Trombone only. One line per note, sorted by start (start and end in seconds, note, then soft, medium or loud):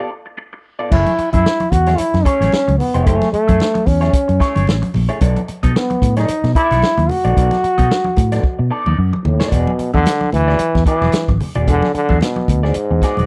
0.00 0.11 G4 loud
0.92 1.31 E4 loud
1.33 1.73 E4 loud
1.71 2.00 F#4 loud
1.98 2.26 E4 loud
2.25 2.78 C#4 loud
2.79 3.08 B3 medium
3.06 3.32 A3 loud
3.32 3.88 A3 loud
3.87 4.94 C#4 medium
5.75 6.14 B3 medium
6.17 6.53 D#4 loud
6.55 7.11 E4 loud
7.10 8.71 F#4 loud
9.25 9.54 A2 medium
9.52 9.93 B2 medium
9.94 10.30 D3 loud
10.33 10.83 E3 loud
10.87 11.37 E3 loud
11.67 11.92 D3 loud
11.94 12.19 D3 loud
12.21 12.65 B2 medium
12.64 13.26 G#2 medium